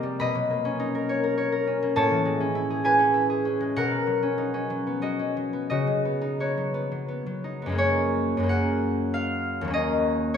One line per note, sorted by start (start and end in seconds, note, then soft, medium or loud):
0.00 0.23 C3 medium
0.00 0.22 G3 medium
0.00 0.49 A#3 medium
0.00 0.23 C4 medium
0.00 0.78 D#4 soft
0.00 0.23 G4 medium
0.00 0.69 A#4 medium
0.00 0.23 C5 medium
0.00 0.20 D#5 medium
0.00 0.22 G5 medium
0.20 1.99 B2 medium
0.20 1.99 D#5 medium
0.20 1.98 B5 loud
0.35 1.98 F#3 medium
0.51 1.81 A#3 soft
0.65 1.66 C#4 medium
0.80 1.99 D#4 medium
0.95 1.22 A#4 medium
1.09 1.36 C#5 medium
1.24 1.51 A#4 medium
1.38 1.96 C#5 medium
1.52 1.99 A#4 medium
1.67 2.39 C#4 soft
1.82 1.99 A#3 medium
1.96 3.79 A2 medium
1.96 5.87 C#5 medium
1.96 3.79 A5 loud
2.10 3.78 E3 medium
2.25 3.59 G#3 medium
2.40 2.98 C#4 medium
2.55 2.83 E4 medium
2.70 3.29 G#4 medium
2.84 3.13 E4 medium
2.84 6.76 B4 medium
2.84 3.78 G#5 medium
2.99 3.44 C#4 medium
3.14 3.78 E4 medium
3.30 3.78 G#4 medium
3.45 4.21 C#4 medium
3.61 3.79 G#3 medium
3.76 5.73 B2 medium
3.76 5.74 A#4 medium
3.76 7.67 F#5 loud
3.91 4.86 B3 medium
4.07 4.69 F#3 soft
4.23 4.53 C#4 medium
4.38 6.20 D#4 medium
4.54 5.18 C#4 soft
4.70 5.01 F#3 medium
4.87 5.52 B3 medium
5.02 5.35 F#3 soft
5.02 5.70 F#4 medium
5.02 5.69 D#5 medium
5.19 7.74 C#4 soft
5.37 5.86 F#3 soft
5.53 6.04 B3 soft
5.70 7.82 C#3 medium
5.70 6.40 F#4 medium
5.70 7.82 D#5 medium
5.87 6.56 F#3 soft
6.05 6.39 B3 soft
6.21 7.43 D#4 medium
6.40 6.73 B3 medium
6.40 10.31 F#4 soft
6.40 7.77 C#5 medium
6.57 6.90 F#3 soft
6.74 7.07 B3 medium
6.92 7.25 F#3 soft
7.08 7.61 B3 soft
7.26 9.63 F#3 soft
7.44 7.82 D#4 soft
7.62 7.82 B3 soft
7.66 8.36 F#2 medium
7.66 8.38 G#3 medium
7.72 8.42 A#3 medium
7.72 8.45 C#4 medium
7.78 10.33 C#5 loud
8.37 9.70 F#2 medium
8.37 9.71 G#3 medium
8.43 9.67 A#3 medium
8.43 9.69 C#4 medium
8.49 10.37 F#5 loud
9.14 10.16 F5 medium
9.61 10.37 D#2 medium
9.61 10.37 F#3 medium
9.68 10.37 A#3 medium
9.68 10.37 C#4 medium
9.74 10.37 D#5 loud